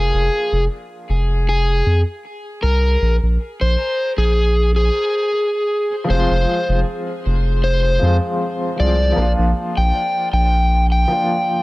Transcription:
Already playing: sub bass F1, electric slide guitar G#4
0.14 sub bass F1
0.52 sub bass F1
1.09 sub bass F1
1.49 electric slide guitar G#4
1.86 sub bass F2
2.63 sub bass C2, electric slide guitar A#4
3.02 sub bass A#1
3.23 sub bass A#1
3.61 sub bass A#1, electric slide guitar C5
4.17 sub bass A#1, electric slide guitar G#4
4.76 electric slide guitar G#4
6.04 felt piano F3 G#3
6.09 sub bass F1, felt piano C4, electric slide guitar C5
6.13 felt piano F4
6.30 sub bass F1
6.69 sub bass F1
7.26 sub bass F1
7.64 electric slide guitar C5
7.99 sub bass F2, felt piano F3 G#3 C4
8.04 felt piano F4
8.76 sub bass C2, felt piano F3 G#3 C4, electric slide guitar D5
8.81 felt piano F4
9.12 felt piano F3 A#3
9.17 sub bass A#1, felt piano D4
9.22 felt piano F4
9.38 sub bass A#1
9.77 sub bass A#1, electric slide guitar G5
10.33 sub bass A#1, electric slide guitar G5
10.92 electric slide guitar G5
11.08 felt piano F3 A#3 D4
11.12 felt piano F4

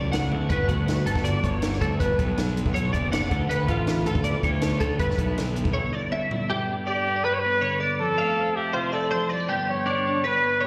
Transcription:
Already playing: picked electric bass C#2, clean electric guitar A2 A3 F#4 D5
0.01 clean electric guitar C#4
0.12 clean electric guitar F#4 F#5, snare, closed hi-hat
0.31 picked electric bass D2, clean electric guitar E4, high tom
0.41 clean electric guitar F#4
0.49 picked electric bass G1, clean electric guitar G2 B3 D4 F#4 B4, kick, closed hi-hat
0.68 picked electric bass D2, clean electric guitar B3 F#4, kick, closed hi-hat
0.87 clean electric guitar D3 B3, snare, closed hi-hat
0.96 clean electric guitar D4
1.06 picked electric bass G1, clean electric guitar B3 A4, closed hi-hat
1.15 picked electric bass G1, kick, snare
1.24 clean electric guitar F#4 D5, closed hi-hat
1.43 picked electric bass G1, clean electric guitar G2 B3 C#5, kick, closed hi-hat
1.62 clean electric guitar B3, snare, closed hi-hat
1.73 clean electric guitar D4, snare
1.81 picked electric bass D2, clean electric guitar F#4 A4, kick, closed hi-hat
2.00 picked electric bass G1, clean electric guitar G2 B3 D4 F#4 B4, kick, closed hi-hat
2.19 picked electric bass B1, clean electric guitar B3, kick, closed hi-hat
2.37 clean electric guitar D3 D4, snare, closed hi-hat
2.57 clean electric guitar B3, closed hi-hat
2.66 picked electric bass B1, kick
2.74 picked electric bass B1, clean electric guitar E4 C#5, closed hi-hat
2.85 clean electric guitar F#4
2.93 picked electric bass F#1, clean electric guitar B3 D5, kick, closed hi-hat
3.12 clean electric guitar B3 F#5, snare, closed hi-hat
3.22 clean electric guitar D4
3.31 picked electric bass D2, clean electric guitar D3 B3 F4, kick, closed hi-hat
3.49 picked electric bass D2, clean electric guitar B3 B4, closed hi-hat
3.68 picked electric bass A1, clean electric guitar A3 F4, kick, closed hi-hat
3.87 clean electric guitar B3, snare, closed hi-hat
4.06 picked electric bass D2, clean electric guitar F4 A4, closed hi-hat
4.15 picked electric bass D2, kick
4.24 clean electric guitar A2 B3 D5, closed hi-hat
4.43 picked electric bass D2, clean electric guitar F4 C#5, kick, closed hi-hat
4.61 clean electric guitar F4, snare, closed hi-hat
4.80 picked electric bass D2, clean electric guitar D3 B3 F4 A4, kick, closed hi-hat
4.99 picked electric bass G1, clean electric guitar G2 B3 D4 E4 B4, kick, closed hi-hat
5.10 snare
5.18 picked electric bass B1, clean electric guitar B3, kick, closed hi-hat
5.37 clean electric guitar D3 D4, snare, closed hi-hat
5.55 clean electric guitar B3, closed hi-hat
5.65 picked electric bass B1, kick
5.74 clean electric guitar E4 C#5
5.93 clean electric guitar G2 B3 D5
6.12 clean electric guitar D4 E5, high tom
6.31 clean electric guitar E4, floor tom
6.50 clean electric guitar G2 D3 B3 D4 G4
6.54 clean electric guitar G4
6.71 clean electric guitar B3
6.87 clean electric guitar D4 D5, trumpet G4
7.08 clean electric guitar B3
7.16 clean electric guitar D4
7.24 clean electric guitar G2 B4, trumpet B4
7.34 trumpet C#5
7.40 trumpet B4
7.46 clean electric guitar B3
7.61 clean electric guitar D3 C#5
7.80 clean electric guitar B3 D5
8.00 clean electric guitar F2, trumpet A4
8.18 clean electric guitar A3 F5
8.39 clean electric guitar C4
8.56 clean electric guitar E4, trumpet G4
8.73 clean electric guitar C3 C5, trumpet F4
8.92 clean electric guitar A3 D5, trumpet A4
9.11 clean electric guitar F3 C5
9.29 clean electric guitar G3 D5
9.40 clean electric guitar A3
9.49 clean electric guitar G2 D3 B3 D4 G4
9.70 clean electric guitar B3, trumpet C#5
9.86 clean electric guitar D4
10.07 clean electric guitar D4
10.23 clean electric guitar G2 B4, trumpet B4
10.44 clean electric guitar B3
10.61 clean electric guitar B2 C#5

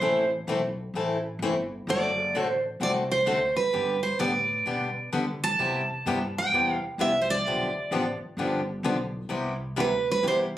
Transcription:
Already playing: steel-string acoustic guitar C5
0.01 upright bass A1, steel-string acoustic guitar E3 A3 C4 E4 A4
0.47 upright bass B1, steel-string acoustic guitar E3 A3 C4 E4 A4
0.94 upright bass A1, steel-string acoustic guitar E3 A3 C4 E4 A4
1.39 upright bass G1, steel-string acoustic guitar E3 A3
1.43 steel-string acoustic guitar C4 E4 A4
1.87 upright bass F#1, steel-string acoustic guitar D3 A3 C4 F#4 A4 D5
2.33 upright bass A1, steel-string acoustic guitar D3 A3 C4 F#4 A4
2.43 steel-string acoustic guitar C5
2.80 upright bass C2, steel-string acoustic guitar D3 A3 C4 F#4 A4 D5
3.12 steel-string acoustic guitar C5
3.26 upright bass D2, steel-string acoustic guitar D3 A3 C4 F#4 A4
3.56 steel-string acoustic guitar B4, muted upright bass stroke
3.73 upright bass G2, steel-string acoustic guitar D3 G3 B3 D4 G4
4.03 steel-string acoustic guitar C5
4.19 upright bass A2, steel-string acoustic guitar D3 G3 B3 D4 G4 D5
4.66 upright bass B2, steel-string acoustic guitar D3 G3 B3 D4 G4
5.13 steel-string acoustic guitar D3 G3 B3 D4 G4, upright bass D3
5.44 steel-string acoustic guitar A5
5.59 steel-string acoustic guitar C3 G3 B3 E4 G4, upright bass C3
5.89 muted upright bass stroke
6.06 upright bass G2, steel-string acoustic guitar C3 G3 B3 E4 G4
6.38 steel-string acoustic guitar G5
6.52 upright bass E2, steel-string acoustic guitar C3 G3 B3 E4 G4
6.82 muted upright bass stroke
6.98 upright bass C2, steel-string acoustic guitar C3 G3 B3 E4 G4 E5
7.22 steel-string acoustic guitar C5
7.30 steel-string acoustic guitar D5
7.45 upright bass B1, steel-string acoustic guitar D3 F3 B3 D4 G4
7.75 muted upright bass stroke
7.91 upright bass A1, steel-string acoustic guitar D3 F3 B3 D4 G4
8.20 muted upright bass stroke
8.37 upright bass G1, steel-string acoustic guitar D3 F3 B3 D4 G4
8.83 upright bass B1, steel-string acoustic guitar D3 F3 B3 D4 G4
9.29 upright bass C2, steel-string acoustic guitar C3 G3 B3 E4 G4
9.76 upright bass D2, steel-string acoustic guitar C3 G3 B3 E4 G4 B4
10.11 steel-string acoustic guitar B4
10.23 upright bass E2, steel-string acoustic guitar C3 G3 B3 E4 G4
10.28 steel-string acoustic guitar C5

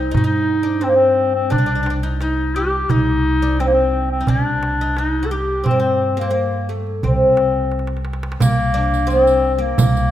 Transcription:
Already playing: upright bass C2, oud D#4, clarinet D#4
0.11 upright bass G2, oud D#4, clarinet D#4, darbuka dum
0.17 oud F#4
0.24 oud D#4, clarinet D#4
0.63 oud D4, darbuka ka
0.81 oud C4, clarinet C4
0.89 clarinet A#3
0.95 clarinet C4
1.35 clarinet C4
1.50 upright bass C2, oud D4, clarinet D4, darbuka dum
1.58 oud D4
1.66 oud D4, darbuka ka
1.75 oud D4
1.83 oud D4, darbuka tek
1.90 oud D4
2.03 oud D#4
2.21 oud D#4, clarinet D#4, darbuka tek
2.55 clarinet G4, oud G4
2.89 upright bass C2, clarinet D#4, oud D#4, darbuka dum
3.41 oud D4, darbuka ka
3.60 clarinet C4, oud C4
3.67 clarinet A#3
3.73 clarinet C4
4.11 clarinet C4
4.21 oud D#4
4.27 upright bass C2, oud D4, clarinet D4, darbuka dum
4.45 darbuka ka
4.63 darbuka tek
4.81 oud D#4
4.97 clarinet D#4, oud D#4, darbuka tek
5.23 oud F#4, clarinet A4
5.31 oud G4, clarinet G4
5.64 upright bass G2, oud C4, clarinet C4, darbuka dum
5.71 oud A#3
5.80 oud C4, clarinet C4
6.17 oud A#3, clarinet A#3
6.21 oud C4
6.31 oud A#3, clarinet A#3
6.53 darbuka ka
6.69 oud A3
6.87 darbuka ka
7.03 upright bass C2, clarinet C4, oud C4, darbuka dum
7.37 darbuka tek
7.72 darbuka tek
7.79 darbuka ka
7.87 darbuka tek
7.97 darbuka ka
8.05 darbuka tek
8.13 darbuka ka
8.23 darbuka tek
8.32 darbuka ka
8.40 upright bass C2, oud A#3, clarinet A#3, riq, darbuka dum
8.74 oud D4, darbuka ka
8.94 riq
9.07 oud C4, clarinet C4, riq
9.27 riq
9.54 clarinet C4
9.59 oud A#3, clarinet A#3
9.78 upright bass C2, riq, darbuka dum
9.97 riq

